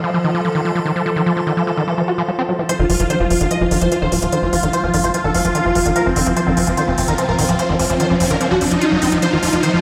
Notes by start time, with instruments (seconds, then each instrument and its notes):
Already playing: ambient pad F3 A4, analog synth pad F4 C5 D#5
0.04 acid bass F3
0.14 acid bass F3
0.24 acid bass D#3
0.35 acid bass F3
0.45 acid bass F3
0.55 acid bass D#3
0.65 acid bass F3
0.75 acid bass F3
0.86 acid bass D#3
0.96 acid bass F3
1.06 acid bass F3
1.16 acid bass D#3
1.26 acid bass F3
1.37 acid bass F3
1.47 acid bass D#3
1.57 acid bass F3
1.67 acid bass F3
1.77 acid bass D#3
1.88 acid bass F3
1.98 acid bass F3
2.08 acid bass F#4
2.18 acid bass F3
2.28 acid bass F#3
2.39 acid bass C4
2.49 acid bass F#3
2.59 acid bass F3
2.69 ambient pad F3 F4, acid bass F3, supersaw synth C5, closed hi-hat, riser
2.79 analog synth bass F1, acid bass D#3, supersaw synth F4
2.90 analog synth bass F1, acid bass F3, supersaw synth F4, open hi-hat
3.00 analog synth bass F1, acid bass F3, supersaw synth F4, closed hi-hat
3.10 acid bass D#3, supersaw synth C5, closed hi-hat
3.20 analog synth bass F1, acid bass F3, supersaw synth F4, analog synth pad F5
3.30 analog synth bass F1, acid bass F3, supersaw synth F4, open hi-hat
3.41 analog synth bass F1, acid bass D#3, supersaw synth F4, closed hi-hat
3.51 acid bass F3, supersaw synth D#5, closed hi-hat
3.61 analog synth bass F1, acid bass F3, supersaw synth F4
3.71 analog synth bass F1, acid bass D#3, supersaw synth F4, open hi-hat
3.81 analog synth bass F1, acid bass F3, supersaw synth C5, closed hi-hat
3.92 acid bass F3, supersaw synth F4, closed hi-hat
4.02 analog synth bass D#1, acid bass D#3, supersaw synth C5
4.12 analog synth bass D#1, acid bass F3, supersaw synth F4, open hi-hat
4.22 analog synth bass D#1, acid bass F3, supersaw synth F4, closed hi-hat
4.32 acid bass D#3, supersaw synth C5, closed hi-hat
4.43 analog synth bass F1, acid bass F3, supersaw synth F4
4.53 analog synth bass F1, acid bass F3, supersaw synth F4, open hi-hat
4.63 analog synth bass F1, acid bass D#3, supersaw synth F4, closed hi-hat
4.73 acid bass F3, supersaw synth C5, closed hi-hat
4.83 analog synth bass F1, acid bass F3, supersaw synth F4
4.94 analog synth bass F#1, acid bass D#3, supersaw synth F4, open hi-hat
5.04 analog synth bass F1, acid bass F3, supersaw synth C5, closed hi-hat
5.14 acid bass F3, supersaw synth F4, closed hi-hat
5.24 analog synth bass F1, acid bass D#3, supersaw synth A4
5.34 analog synth bass F1, acid bass F3, supersaw synth F4, open hi-hat
5.45 analog synth bass F1, acid bass F3, supersaw synth F4, closed hi-hat
5.55 acid bass D#3, closed hi-hat
5.65 analog synth bass F1, acid bass F3
5.75 analog synth bass F1, acid bass F3, open hi-hat
5.85 analog synth bass F1, acid bass D#3, closed hi-hat
5.96 acid bass F3, supersaw synth A#4, closed hi-hat
6.06 analog synth bass F1, acid bass F3, supersaw synth C4
6.16 analog synth bass F1, acid bass D#3, supersaw synth C4, open hi-hat
6.26 analog synth bass F1, acid bass F3, supersaw synth C4, closed hi-hat
6.37 acid bass F3, supersaw synth C5, closed hi-hat
6.47 analog synth bass F1, acid bass D#3, supersaw synth C4
6.57 analog synth bass F1, acid bass F3, supersaw synth C4, open hi-hat
6.67 analog synth bass F1, acid bass F3, supersaw synth C4, closed hi-hat
6.77 acid bass D#3, supersaw synth C5, closed hi-hat
6.88 analog synth bass F1, acid bass F3, supersaw synth C4
6.98 analog synth bass F1, acid bass F3, supersaw synth C4, open hi-hat
7.08 analog synth bass F1, acid bass D#3, supersaw synth A#4, closed hi-hat
7.18 acid bass F3, supersaw synth C4, closed hi-hat
7.28 analog synth bass D#1, acid bass F3, supersaw synth A#4
7.39 analog synth bass D#1, acid bass D#3, supersaw synth C4, open hi-hat
7.49 analog synth bass D#1, acid bass F3, supersaw synth C4, closed hi-hat
7.59 acid bass F3, supersaw synth C5, closed hi-hat
7.69 analog synth bass F1, acid bass D#3, supersaw synth C4
7.79 analog synth bass F1, acid bass F3, supersaw synth C4, open hi-hat
7.90 analog synth bass F1, acid bass F3, supersaw synth C4, closed hi-hat
8.00 acid bass D#3, supersaw synth C5, closed hi-hat
8.10 analog synth bass F1, acid bass F3, supersaw synth C4
8.20 analog synth bass F#1, acid bass F3, supersaw synth C4, open hi-hat
8.30 analog synth bass F1, acid bass D#3, supersaw synth A#4, closed hi-hat
8.41 acid bass F3, supersaw synth C4, closed hi-hat
8.51 analog synth bass F1, acid bass F3, supersaw synth F#4
8.61 analog synth bass F1, acid bass F3, supersaw synth C4, open hi-hat
8.71 analog synth bass F1, acid bass F3, supersaw synth D#4, closed hi-hat
8.81 acid bass F4, closed hi-hat
8.92 analog synth bass F1, acid bass F#3
9.02 analog synth bass F1, acid bass C4, open hi-hat
9.12 analog synth bass F1, acid bass F3, closed hi-hat
9.22 acid bass F3, ambient pad A#4, supersaw synth C5, closed hi-hat
9.32 analog synth bass F1, acid bass D#3, supersaw synth F4
9.43 analog synth bass F1, acid bass F3, supersaw synth F4, open hi-hat
9.53 analog synth bass F1, acid bass F3, supersaw synth F4, closed hi-hat
9.60 acid bass D#3, supersaw synth C5, analog synth pad D#5, closed hi-hat
9.73 analog synth bass F1, acid bass F3, supersaw synth F4